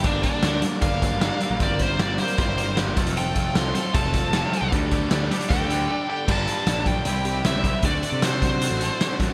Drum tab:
CC |----------------|----------------|----------------|----------------|
HH |x-x-x-x-x-x-x-x-|x-x-x-xxx-x-x-xx|x-x-x-x-x-x-x-x-|x-x-x-xxx-x-----|
SD |----o----o--o---|----o----o--o---|----o----o--o---|----o----o------|
BD |o-o-----o-o-----|o-o-----o-----o-|--o-----o-o-----|o-o-----o-------|

CC |x---------------|----------------|
HH |--x-x-x-x-x-x-x-|x-x-x-x-x-x-x-x-|
SD |----o-------o---|----o-------o---|
BD |o-----o-------o-|o-----o-------o-|